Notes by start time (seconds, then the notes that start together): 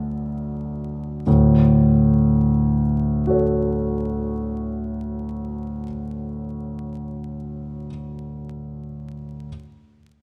Already playing: D2 F#3 A3 E4 A4 F#5 A5 E6 A6
1.27 D2 A2
3.27 F#4 A4 C#5